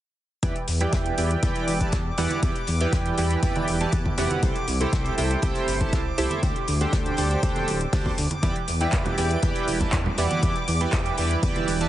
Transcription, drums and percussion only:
0.43 kick, closed hi-hat
0.56 closed hi-hat
0.68 closed hi-hat, open hi-hat
0.81 closed hi-hat
0.93 kick, snare, closed hi-hat
1.06 closed hi-hat
1.18 closed hi-hat, open hi-hat
1.31 closed hi-hat
1.43 kick, closed hi-hat
1.55 closed hi-hat
1.68 closed hi-hat, open hi-hat
1.81 kick, closed hi-hat
1.92 kick, snare, closed hi-hat
2.18 closed hi-hat, open hi-hat
2.30 closed hi-hat, high conga
2.43 kick, closed hi-hat
2.56 closed hi-hat
2.67 closed hi-hat, open hi-hat
2.81 closed hi-hat
2.92 kick, snare, closed hi-hat
3.06 closed hi-hat
3.18 closed hi-hat, open hi-hat
3.31 closed hi-hat
3.43 kick, closed hi-hat
3.56 closed hi-hat, high conga
3.68 closed hi-hat, open hi-hat
3.81 closed hi-hat
3.92 kick, closed hi-hat
4.06 kick, high conga
4.18 snare, closed hi-hat, open hi-hat
4.31 closed hi-hat, high conga
4.43 kick, closed hi-hat
4.56 closed hi-hat
4.68 closed hi-hat, open hi-hat
4.81 closed hi-hat
4.93 kick, snare, closed hi-hat
5.06 closed hi-hat
5.18 closed hi-hat, open hi-hat
5.31 closed hi-hat
5.42 kick, closed hi-hat
5.55 closed hi-hat
5.68 closed hi-hat, open hi-hat
5.81 kick, closed hi-hat
5.93 kick, snare, closed hi-hat
6.18 closed hi-hat, open hi-hat
6.30 closed hi-hat, high conga
6.43 kick, closed hi-hat
6.56 closed hi-hat
6.68 closed hi-hat, open hi-hat
6.81 closed hi-hat
6.93 kick, snare, closed hi-hat
7.06 closed hi-hat
7.17 closed hi-hat, open hi-hat
7.31 closed hi-hat
7.43 kick, closed hi-hat
7.56 closed hi-hat, high conga
7.68 closed hi-hat, open hi-hat
7.81 closed hi-hat
7.93 kick, snare, closed hi-hat, open hi-hat
8.06 kick, high conga
8.18 closed hi-hat, open hi-hat
8.31 closed hi-hat, high conga
8.43 kick, closed hi-hat
8.56 closed hi-hat
8.68 closed hi-hat, open hi-hat
8.81 closed hi-hat
8.92 kick, snare, clap, closed hi-hat
9.05 closed hi-hat, low conga
9.18 closed hi-hat, open hi-hat
9.31 closed hi-hat
9.42 kick, closed hi-hat
9.55 closed hi-hat
9.68 closed hi-hat, open hi-hat
9.80 kick, closed hi-hat, low conga
9.92 kick, snare, clap, closed hi-hat
10.06 low conga
10.18 closed hi-hat, open hi-hat
10.31 closed hi-hat, high conga
10.43 kick, closed hi-hat
10.56 closed hi-hat
10.68 closed hi-hat, open hi-hat
10.81 closed hi-hat
10.93 kick, snare, clap, closed hi-hat
11.06 closed hi-hat
11.18 closed hi-hat, open hi-hat
11.31 closed hi-hat
11.43 kick, closed hi-hat
11.56 closed hi-hat, high conga
11.68 closed hi-hat, open hi-hat
11.81 closed hi-hat

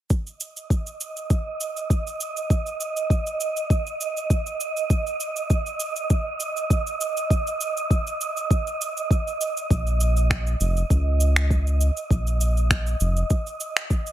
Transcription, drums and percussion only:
0.10 kick, shaker
0.27 shaker
0.40 shaker
0.57 shaker
0.70 kick, shaker
0.87 shaker
1.01 shaker
1.17 shaker
1.30 kick, shaker
1.61 shaker
1.77 shaker
1.90 kick, shaker
2.07 shaker
2.21 shaker
2.37 shaker
2.50 kick, shaker
2.66 shaker
2.81 shaker
2.97 shaker
3.10 kick, shaker
3.27 shaker
3.40 shaker
3.57 shaker
3.70 kick, shaker
3.87 shaker
4.01 shaker
4.17 shaker
4.30 kick, shaker
4.46 shaker
4.60 shaker
4.77 shaker
4.90 kick, shaker
5.07 shaker
5.20 shaker
5.36 shaker
5.50 kick, shaker
5.66 shaker
5.80 shaker
5.96 shaker
6.10 kick, shaker
6.40 shaker
6.57 shaker
6.70 kick, shaker
6.87 shaker
7.01 shaker
7.17 shaker
7.30 kick, shaker
7.47 shaker
7.61 shaker
7.77 shaker
7.91 kick, shaker
8.07 shaker
8.21 shaker
8.37 shaker
8.51 kick, shaker
8.67 shaker
8.81 shaker
8.97 shaker
9.11 kick, shaker
9.27 shaker
9.41 shaker
9.57 shaker
9.70 kick, shaker
9.87 shaker
10.00 shaker
10.17 shaker
10.30 finger snap, kick, shaker
10.47 shaker
10.61 shaker
10.77 shaker
10.90 kick, shaker
11.20 shaker
11.36 finger snap, shaker
11.50 kick, shaker
11.67 shaker
11.81 shaker
11.97 shaker
12.11 kick, shaker
12.27 shaker
12.41 shaker
12.57 shaker
12.70 finger snap, kick, shaker
12.87 shaker
13.00 shaker
13.17 shaker
13.30 kick, shaker
13.47 shaker
13.60 shaker
13.77 finger snap, shaker
13.90 kick, shaker
14.06 shaker

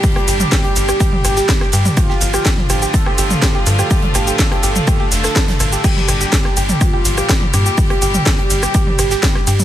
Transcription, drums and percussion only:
0.03 kick, open hi-hat, ride, shaker
0.16 cross-stick, closed hi-hat
0.27 closed hi-hat, open hi-hat, ride, shaker
0.40 mid tom, shaker
0.52 kick, cross-stick, snare, closed hi-hat, ride, shaker
0.64 closed hi-hat
0.76 closed hi-hat, open hi-hat, ride, shaker
0.89 cross-stick, shaker
1.00 kick, closed hi-hat, ride, shaker
1.13 mid tom
1.24 cross-stick, closed hi-hat, open hi-hat, ride, shaker
1.36 snare, shaker
1.49 kick, snare, closed hi-hat, ride, shaker
1.61 cross-stick, snare
1.72 closed hi-hat, open hi-hat, ride, shaker
1.85 mid tom, shaker
1.97 kick, cross-stick, closed hi-hat, ride, shaker
2.09 snare
2.21 closed hi-hat, open hi-hat, ride, shaker
2.34 cross-stick, shaker
2.45 kick, snare, closed hi-hat, ride, shaker
2.58 snare, mid tom
2.70 cross-stick, closed hi-hat, open hi-hat, ride, shaker
2.82 shaker
2.94 kick, closed hi-hat, ride, shaker
3.06 cross-stick
3.18 closed hi-hat, open hi-hat, ride, shaker
3.30 closed hi-hat, mid tom, shaker
3.42 kick, cross-stick, snare, closed hi-hat, ride, shaker
3.67 closed hi-hat, open hi-hat, ride, shaker
3.79 cross-stick, shaker
3.91 kick, open hi-hat, ride, shaker
4.02 closed hi-hat, mid tom
4.14 cross-stick, closed hi-hat, open hi-hat, ride, shaker
4.27 shaker
4.38 kick, snare, closed hi-hat, ride, shaker
4.52 cross-stick, closed hi-hat
4.63 closed hi-hat, open hi-hat, ride, shaker
4.76 mid tom, shaker
4.87 kick, cross-stick, closed hi-hat, ride, shaker
5.12 snare, closed hi-hat, open hi-hat, ride, shaker
5.24 cross-stick, snare, closed hi-hat, shaker
5.35 kick, snare, closed hi-hat, ride, shaker
5.48 snare, closed hi-hat, mid tom
5.59 cross-stick, closed hi-hat, open hi-hat, ride, shaker
5.72 shaker
5.84 kick, closed hi-hat, crash, ride, shaker
5.96 snare, mid tom
6.08 cross-stick, closed hi-hat, open hi-hat, ride, shaker
6.21 shaker
6.32 kick, snare, closed hi-hat, ride, shaker
6.45 cross-stick, snare
6.57 closed hi-hat, open hi-hat, ride, shaker
6.69 mid tom, shaker
6.81 kick, cross-stick, closed hi-hat, ride, shaker
7.05 closed hi-hat, open hi-hat, ride, shaker
7.17 cross-stick, closed hi-hat, shaker
7.29 kick, snare, closed hi-hat, ride, shaker
7.42 mid tom
7.54 cross-stick, closed hi-hat, open hi-hat, ride, shaker
7.66 shaker
7.77 kick, open hi-hat, ride, shaker
7.90 cross-stick, closed hi-hat
8.02 closed hi-hat, open hi-hat, ride, shaker
8.14 mid tom, shaker
8.26 kick, cross-stick, snare, closed hi-hat, ride, shaker
8.39 closed hi-hat
8.50 closed hi-hat, open hi-hat, ride, shaker
8.63 cross-stick, shaker
8.74 kick, closed hi-hat, ride, shaker
8.87 mid tom
8.98 cross-stick, closed hi-hat, open hi-hat, ride, shaker
9.11 snare, shaker
9.23 kick, snare, closed hi-hat, ride, shaker
9.35 cross-stick, snare
9.47 closed hi-hat, open hi-hat, ride, shaker
9.60 mid tom, shaker

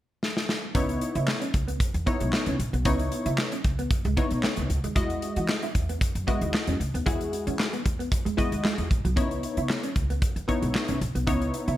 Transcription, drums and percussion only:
0.23 snare
0.37 snare
0.49 snare
0.75 kick, closed hi-hat
0.89 closed hi-hat
1.01 closed hi-hat
1.15 closed hi-hat
1.28 snare, clap
1.41 closed hi-hat
1.54 kick, closed hi-hat
1.68 closed hi-hat
1.80 kick, closed hi-hat
1.94 closed hi-hat
2.07 kick, closed hi-hat
2.20 closed hi-hat
2.33 snare, clap
2.46 closed hi-hat
2.60 closed hi-hat
2.74 closed hi-hat
2.85 kick, closed hi-hat
2.99 closed hi-hat
3.12 closed hi-hat
3.26 closed hi-hat
3.38 snare, clap
3.52 closed hi-hat
3.64 kick, closed hi-hat
3.79 closed hi-hat
3.91 kick, closed hi-hat
4.05 closed hi-hat
4.17 kick, closed hi-hat
4.31 closed hi-hat
4.43 snare, clap
4.56 closed hi-hat
4.70 closed hi-hat
4.84 closed hi-hat
4.96 kick, closed hi-hat
5.10 closed hi-hat
5.22 closed hi-hat
5.36 closed hi-hat
5.49 snare, clap
5.62 closed hi-hat
5.75 kick, closed hi-hat
5.89 closed hi-hat
6.01 kick, closed hi-hat
6.15 closed hi-hat
6.28 kick, closed hi-hat
6.41 closed hi-hat
6.54 snare, clap
6.67 closed hi-hat
6.81 closed hi-hat
6.95 closed hi-hat
7.07 kick, closed hi-hat
7.21 closed hi-hat
7.33 closed hi-hat
7.47 closed hi-hat
7.59 snare, clap
7.73 closed hi-hat
7.86 kick, closed hi-hat
8.00 closed hi-hat
8.12 kick, closed hi-hat
8.26 closed hi-hat
8.38 kick, closed hi-hat
8.52 closed hi-hat
8.65 snare, clap
8.78 closed hi-hat
8.91 kick, closed hi-hat
9.05 closed hi-hat
9.17 kick, closed hi-hat
9.31 closed hi-hat
9.43 closed hi-hat
9.57 closed hi-hat
9.69 snare, clap
9.83 closed hi-hat
9.96 kick, closed hi-hat
10.10 closed hi-hat
10.22 kick, closed hi-hat
10.36 closed hi-hat
10.49 kick, closed hi-hat
10.62 closed hi-hat
10.75 snare, clap
10.88 closed hi-hat
11.01 closed hi-hat
11.16 closed hi-hat
11.27 kick, closed hi-hat
11.42 closed hi-hat
11.54 closed hi-hat
11.68 closed hi-hat

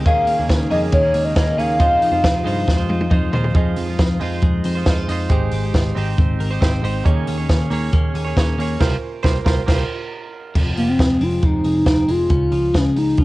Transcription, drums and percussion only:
0.06 kick, hi-hat pedal, ride
0.27 open hi-hat
0.49 kick, snare, hi-hat pedal, ride
0.71 open hi-hat
0.92 kick, hi-hat pedal, ride
1.14 open hi-hat
1.36 kick, snare, hi-hat pedal, ride
1.59 open hi-hat
1.80 kick, hi-hat pedal, ride
2.02 open hi-hat
2.23 kick, snare, hi-hat pedal, ride
2.46 open hi-hat
2.68 kick, snare
2.90 high tom
3.01 high tom
3.11 kick, mid tom
3.33 floor tom
3.44 floor tom
3.54 kick, closed hi-hat
3.76 open hi-hat
3.99 kick, snare, closed hi-hat
4.20 open hi-hat
4.42 kick, closed hi-hat
4.64 open hi-hat
4.86 kick, snare, closed hi-hat
5.09 open hi-hat
5.29 kick, closed hi-hat
5.51 open hi-hat
5.74 kick, snare, closed hi-hat
5.97 open hi-hat
6.18 kick, closed hi-hat
6.40 open hi-hat
6.62 kick, snare, closed hi-hat
6.84 open hi-hat
7.06 kick, closed hi-hat
7.27 open hi-hat
7.49 kick, snare, closed hi-hat
7.71 open hi-hat
7.93 kick, closed hi-hat
8.15 open hi-hat
8.37 kick, snare, closed hi-hat
8.60 open hi-hat
8.80 kick, snare, crash
9.24 kick, snare
9.46 kick, snare
9.68 kick, snare, crash
10.55 kick, crash
10.77 open hi-hat
10.99 kick, snare, closed hi-hat
11.21 open hi-hat
11.42 kick, closed hi-hat
11.64 open hi-hat
11.86 kick, snare, closed hi-hat
12.08 open hi-hat
12.29 kick, closed hi-hat
12.52 open hi-hat
12.74 kick, snare, closed hi-hat
12.96 open hi-hat
13.17 kick, closed hi-hat

